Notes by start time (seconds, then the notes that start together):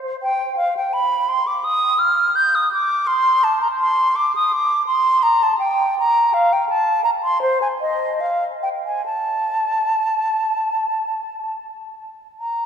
0.23 G5
0.57 F5
0.77 G5
0.93 B5
1.28 C6
1.47 D6
1.64 D#6
1.99 F6
2.36 G6
2.55 D#6
2.73 D6
3.07 C6
3.44 A5
3.62 A#5
3.80 C6
4.16 D6
4.35 D#6
4.53 D6
4.87 C6
5.23 A#5
5.43 A5
5.59 G5
5.99 A#5
6.34 F5
6.53 G5
6.69 A5
7.04 A#5
7.23 C6
7.42 C5
7.62 G#5
7.81 D#5
8.21 F5
8.63 G5
8.85 G#5
9.06 A5
12.40 A#5